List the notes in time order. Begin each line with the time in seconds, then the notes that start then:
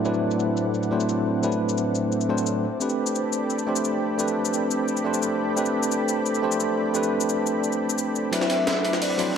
Already playing: A2 F#3 A3 C4 D4 E4 B4 C5 D5 F#5
0.04 A2 F#3 C4 D4 E4 B4, shaker
0.14 shaker
0.31 shaker
0.40 shaker
0.57 shaker
0.74 shaker
0.83 shaker
0.90 A2 F#3 C4 D4 E4 C5
1.00 shaker
1.09 shaker
1.42 A2 F#3 C4 D4 E4 B4, shaker
1.52 shaker
1.69 shaker
1.78 shaker
1.95 shaker
2.12 shaker
2.21 shaker
2.29 A2 F#3 C4 D4 E4 C5
2.38 shaker
2.46 shaker
2.64 A4 D5 G5 B5
2.80 A3 C4 D4 G4 B4, shaker
2.90 shaker
3.07 shaker
3.15 shaker
3.33 shaker
3.50 shaker
3.59 shaker
3.67 A3 C4 D4 G4 C5
3.76 shaker
3.85 shaker
4.18 A3 C4 D4 G4 B4, shaker
4.28 shaker
4.45 shaker
4.54 shaker
4.71 shaker
4.88 shaker
4.97 shaker
5.04 A3 C4 D4 G4 C5
5.14 shaker
5.23 shaker
5.56 A3 C4 D4 G4 B4, shaker
5.66 shaker
5.83 shaker
5.92 shaker
6.09 shaker
6.26 shaker
6.35 shaker
6.42 A3 C4 D4 G4 C5
6.52 shaker
6.60 shaker
6.94 A3 C4 D4 G4 B4, shaker
7.03 shaker
7.21 shaker
7.29 shaker
7.47 shaker
7.64 shaker
7.73 shaker
7.90 shaker
7.98 shaker
8.16 shaker
8.32 F#3 A3 C4 D4 E4 B4 D5 E5 F#5 B5, closed hi-hat, ride
8.41 snare
8.50 snare, closed hi-hat, ride
8.67 snare, closed hi-hat, ride
8.85 closed hi-hat, ride
8.93 snare, closed hi-hat
9.02 D5, closed hi-hat, open hi-hat
9.10 ride
9.18 F#3 C4 D4 E4 C5, closed hi-hat, ride